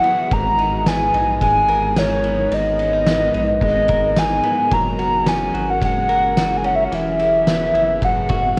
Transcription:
0.00 0.29 E3 medium
0.00 0.31 E3 medium
0.00 0.37 F#3 medium
0.00 0.87 B3 medium
0.00 0.29 E4 medium
0.00 0.37 E4 medium
0.00 0.29 F#4 medium
0.00 0.27 G#4 medium
0.00 1.69 G#4 medium
0.00 0.34 F#5 loud
0.00 ride soft
0.31 1.10 G#1 loud
0.31 2.50 G#2 medium
0.31 4.68 G#3 medium
0.31 4.68 B3 medium
0.31 4.68 D#4 medium
0.31 6.88 A#4 medium
0.31 0.89 A#5 loud
0.31 kick loud
0.31 ride soft
0.58 1.13 D#4 medium
0.58 ride soft
0.86 2.23 B3 medium
0.86 1.42 G#5 loud
0.86 snare loud
0.86 ride medium
0.86 tambourine medium
1.13 1.40 A#1 medium
1.13 1.97 D#4 medium
1.13 ride soft
1.41 2.47 G#1 loud
1.41 3.62 G#3 medium
1.41 2.00 G#5 loud
1.41 kick medium
1.41 ride medium
1.68 3.89 A#4 medium
1.68 ride soft
1.96 2.10 C#4 medium
1.96 2.55 C#5 loud
1.96 snare loud
1.96 ride medium
1.96 tambourine medium
2.10 2.79 D#4 medium
2.24 3.06 B3 medium
2.24 ride soft
2.51 3.30 G#1 loud
2.51 4.72 G#2 medium
2.51 3.63 D#5 loud
2.51 ride medium
2.79 2.93 C#4 medium
2.79 ride soft
2.93 3.33 D#4 medium
3.07 4.43 B3 medium
3.07 snare loud
3.07 ride medium
3.07 tambourine medium
3.34 3.60 A#1 medium
3.34 4.16 D#4 medium
3.34 ride soft
3.61 4.40 G#1 loud
3.61 5.02 G#3 medium
3.61 4.20 D#5 loud
3.61 kick medium
3.61 ride medium
3.88 5.85 A#4 medium
3.88 kick medium
3.88 ride soft
4.16 4.77 D#4 medium
4.16 4.75 G#5 loud
4.16 snare loud
4.16 ride medium
4.16 tambourine medium
4.44 4.77 B3 medium
4.44 ride soft
4.72 5.50 F#1 loud
4.72 6.90 F#3 medium
4.72 6.91 F#3 medium
4.72 6.90 C#4 medium
4.72 6.90 G#4 medium
4.72 5.30 A#5 loud
4.72 kick loud
4.72 ride medium
4.99 5.54 F#4 medium
4.99 ride soft
5.26 6.63 C#4 medium
5.26 5.71 G#5 loud
5.26 snare loud
5.26 ride medium
5.26 tambourine medium
5.54 5.80 G#1 loud
5.54 6.37 F#4 medium
5.54 ride soft
5.70 5.83 F#5 medium
5.82 6.88 F#1 loud
5.82 6.97 G#3 medium
5.82 6.59 F#5 loud
5.82 kick medium
5.82 ride medium
6.09 6.97 A#4 medium
6.09 ride soft
6.37 7.19 F#4 medium
6.37 snare loud
6.37 ride medium
6.37 tambourine medium
6.57 6.67 G#5 medium
6.64 6.97 C#4 medium
6.64 6.77 F#5 medium
6.64 ride soft
6.75 6.86 E5 medium
6.84 6.96 F#5 medium
6.92 7.70 E1 loud
6.92 8.07 E3 medium
6.92 8.59 B3 medium
6.92 8.06 E5 loud
6.92 ride medium
7.19 7.73 E4 medium
7.19 ride soft
7.47 8.59 B3 medium
7.47 snare loud
7.47 ride medium
7.47 tambourine medium
7.74 8.00 F#1 medium
7.74 8.07 E4 medium
7.74 ride soft
8.02 8.59 F#1 loud
8.02 8.59 F#2 medium
8.02 8.58 F#5 medium
8.02 kick medium
8.02 ride medium
8.29 8.59 F#4 medium
8.29 kick medium
8.29 ride soft

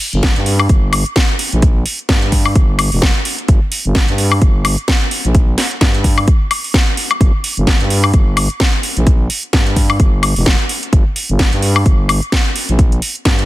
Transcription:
0.00 open hi-hat loud
0.13 0.34 G1 loud
0.13 closed hi-hat soft
0.23 kick loud
0.23 snare loud
0.23 closed hi-hat medium
0.36 0.68 G2 loud
0.36 closed hi-hat soft
0.46 open hi-hat loud
0.60 high woodblock medium
0.69 1.04 G1 medium
0.69 kick loud
0.69 closed hi-hat medium
0.93 open hi-hat loud
0.93 high woodblock medium
1.06 closed hi-hat soft
1.16 kick loud
1.16 snare loud
1.16 closed hi-hat medium
1.39 open hi-hat loud
1.52 1.84 A#1 loud
1.52 closed hi-hat medium
1.62 kick loud
1.62 closed hi-hat medium
1.86 open hi-hat loud
1.99 closed hi-hat soft
2.09 2.54 G2 loud
2.09 kick loud
2.09 snare loud
2.09 closed hi-hat medium
2.22 closed hi-hat soft
2.32 kick medium
2.32 open hi-hat loud
2.46 high woodblock medium
2.55 2.90 G1 medium
2.55 kick loud
2.55 closed hi-hat medium
2.79 open hi-hat loud
2.79 high woodblock medium
2.92 3.13 F1 loud
2.92 open hi-hat medium
3.02 kick loud
3.02 snare loud
3.02 closed hi-hat medium
3.25 open hi-hat loud
3.39 closed hi-hat medium
3.48 3.60 G1 medium
3.48 kick loud
3.48 closed hi-hat medium
3.72 open hi-hat loud
3.85 4.06 G1 medium
3.85 closed hi-hat soft
3.95 kick loud
3.95 snare loud
3.95 closed hi-hat medium
4.08 4.40 G2 loud
4.08 closed hi-hat soft
4.18 open hi-hat loud
4.32 high woodblock medium
4.42 4.76 G1 medium
4.42 kick loud
4.42 closed hi-hat medium
4.65 open hi-hat loud
4.65 high woodblock medium
4.78 closed hi-hat soft
4.88 kick loud
4.88 snare loud
4.88 closed hi-hat medium
5.11 open hi-hat loud
5.25 5.56 A#1 medium
5.25 closed hi-hat soft
5.35 kick loud
5.35 closed hi-hat medium
5.58 snare medium
5.58 open hi-hat loud
5.71 closed hi-hat soft
5.81 6.26 G2 medium
5.81 kick loud
5.81 snare loud
5.81 closed hi-hat medium
5.94 closed hi-hat soft
6.04 kick medium
6.04 open hi-hat loud
6.18 high woodblock medium
6.28 kick loud
6.28 closed hi-hat medium
6.51 open hi-hat loud
6.51 high woodblock medium
6.64 open hi-hat medium
6.74 kick loud
6.74 snare loud
6.97 open hi-hat loud
7.11 closed hi-hat soft
7.11 high woodblock medium
7.21 7.32 G1 medium
7.21 kick loud
7.21 closed hi-hat medium
7.44 open hi-hat loud
7.57 7.78 G1 medium
7.57 closed hi-hat soft
7.67 kick loud
7.67 snare loud
7.67 closed hi-hat medium
7.81 8.12 G2 loud
7.81 closed hi-hat soft
7.90 open hi-hat loud
8.04 high woodblock medium
8.14 8.48 G1 medium
8.14 kick loud
8.14 closed hi-hat medium
8.37 open hi-hat loud
8.37 high woodblock medium
8.50 closed hi-hat soft
8.60 kick loud
8.60 snare loud
8.60 closed hi-hat medium
8.83 open hi-hat loud
8.97 9.28 A#1 loud
8.97 closed hi-hat soft
9.07 kick loud
9.07 closed hi-hat medium
9.30 open hi-hat loud
9.43 closed hi-hat soft
9.53 9.98 G2 medium
9.53 kick loud
9.53 snare loud
9.53 closed hi-hat medium
9.66 closed hi-hat soft
9.76 kick medium
9.76 open hi-hat loud
9.90 high woodblock medium
10.00 10.34 G1 medium
10.00 kick loud
10.00 closed hi-hat medium
10.23 open hi-hat loud
10.23 high woodblock medium
10.36 10.57 F1 loud
10.36 open hi-hat medium
10.46 kick loud
10.46 snare loud
10.46 closed hi-hat medium
10.69 open hi-hat loud
10.83 closed hi-hat medium
10.93 11.04 G1 medium
10.93 kick loud
10.93 closed hi-hat medium
11.16 open hi-hat medium
11.29 11.51 G1 medium
11.29 closed hi-hat soft
11.39 kick loud
11.39 snare loud
11.39 closed hi-hat medium
11.53 11.84 G2 loud
11.53 closed hi-hat medium
11.62 open hi-hat loud
11.76 high woodblock medium
11.86 12.20 G1 medium
11.86 kick loud
11.86 closed hi-hat medium
12.09 open hi-hat loud
12.09 high woodblock medium
12.22 closed hi-hat soft
12.32 kick loud
12.32 snare loud
12.32 closed hi-hat medium
12.56 open hi-hat loud
12.69 13.01 A#1 loud
12.69 closed hi-hat medium
12.79 kick loud
12.79 closed hi-hat medium
12.92 closed hi-hat soft
13.02 open hi-hat loud
13.15 closed hi-hat soft
13.25 13.45 G2 medium
13.25 kick loud
13.25 snare loud
13.25 closed hi-hat medium
13.39 closed hi-hat medium

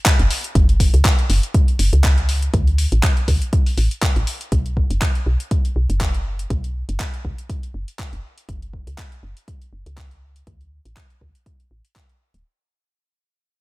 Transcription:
0.06 kick loud
0.06 clap loud
0.06 closed hi-hat medium
0.19 0.28 F#1 medium
0.19 closed hi-hat soft
0.31 open hi-hat loud
0.44 closed hi-hat medium
0.55 0.89 F#1 loud
0.55 kick loud
0.55 closed hi-hat medium
0.69 closed hi-hat soft
0.80 kick medium
0.80 open hi-hat loud
0.94 1.02 C#2 medium
0.94 closed hi-hat medium
1.05 kick loud
1.05 clap loud
1.05 closed hi-hat medium
1.19 closed hi-hat soft
1.30 1.40 F#1 loud
1.30 open hi-hat loud
1.43 closed hi-hat soft
1.54 kick loud
1.54 closed hi-hat medium
1.68 closed hi-hat soft
1.79 1.90 F#1 medium
1.79 open hi-hat loud
1.93 2.49 C#2 medium
1.93 closed hi-hat soft
2.04 kick loud
2.04 clap loud
2.04 closed hi-hat medium
2.18 closed hi-hat soft
2.29 open hi-hat loud
2.42 closed hi-hat soft
2.54 2.87 D2 loud
2.54 kick loud
2.54 closed hi-hat medium
2.67 closed hi-hat soft
2.78 open hi-hat loud
2.92 3.01 A1 medium
2.92 closed hi-hat soft
3.03 kick loud
3.03 clap loud
3.03 closed hi-hat medium
3.17 closed hi-hat soft
3.28 3.38 D2 medium
3.28 kick medium
3.28 open hi-hat loud
3.42 closed hi-hat soft
3.53 kick loud
3.53 closed hi-hat medium
3.66 open hi-hat medium
3.78 3.88 A1 loud
3.78 open hi-hat loud
3.91 closed hi-hat soft
4.02 kick loud
4.02 clap loud
4.02 closed hi-hat medium
4.16 4.25 A1 medium
4.16 closed hi-hat soft
4.27 open hi-hat loud
4.41 closed hi-hat soft
4.52 4.85 B1 loud
4.52 kick loud
4.52 closed hi-hat medium
4.66 closed hi-hat soft
4.77 kick medium
4.91 4.99 F#1 loud
4.91 closed hi-hat soft
5.02 kick loud
5.02 clap loud
5.02 closed hi-hat medium
5.15 closed hi-hat soft
5.26 5.37 B1 medium
5.40 closed hi-hat soft
5.51 kick loud
5.51 closed hi-hat medium
5.65 closed hi-hat soft
5.76 5.86 B1 medium
5.90 6.46 F#1 medium
5.90 closed hi-hat soft
6.01 kick loud
6.01 clap loud
6.01 closed hi-hat medium
6.14 closed hi-hat soft
6.39 closed hi-hat soft
6.50 6.84 B1 loud
6.50 kick loud
6.50 closed hi-hat medium
6.64 closed hi-hat soft
6.89 6.97 F#1 medium
6.89 closed hi-hat soft
7.00 kick loud
7.00 clap loud
7.00 closed hi-hat medium
7.14 closed hi-hat soft
7.25 7.35 B1 medium
7.25 kick medium
7.38 closed hi-hat soft
7.50 kick loud
7.50 closed hi-hat medium
7.63 closed hi-hat soft
7.74 7.85 F#1 medium
7.88 closed hi-hat soft
7.99 kick loud
7.99 clap loud
7.99 closed hi-hat medium
8.13 8.21 F#1 medium
8.13 closed hi-hat soft
8.38 closed hi-hat soft
8.49 8.82 F#1 medium
8.49 kick loud
8.49 closed hi-hat medium
8.62 closed hi-hat soft
8.73 kick medium
8.87 8.96 C#2 medium
8.87 closed hi-hat soft
8.98 kick loud
8.98 clap loud
8.98 closed hi-hat medium
9.12 closed hi-hat soft
9.23 9.33 F#1 medium
9.37 closed hi-hat medium
9.48 kick loud
9.48 closed hi-hat medium
9.62 closed hi-hat soft
9.73 9.83 F#1 medium
9.86 10.43 C#2 medium
9.86 closed hi-hat soft
9.97 kick loud
9.97 clap loud
9.97 closed hi-hat medium
10.11 closed hi-hat soft
10.36 closed hi-hat soft
10.47 10.80 D2 loud
10.47 kick loud
10.47 closed hi-hat medium
10.61 closed hi-hat soft
10.85 10.94 A1 medium
10.85 closed hi-hat soft
10.97 kick loud
10.97 clap loud
10.97 closed hi-hat medium
11.10 closed hi-hat soft
11.21 11.32 D2 medium
11.21 kick medium
11.35 closed hi-hat soft
11.46 kick loud
11.46 closed hi-hat medium
11.60 closed hi-hat soft
11.71 11.81 A1 medium
11.85 closed hi-hat soft
11.96 kick loud
11.96 clap loud
11.96 closed hi-hat medium
12.09 closed hi-hat soft
12.34 12.43 D1 medium
12.34 closed hi-hat soft

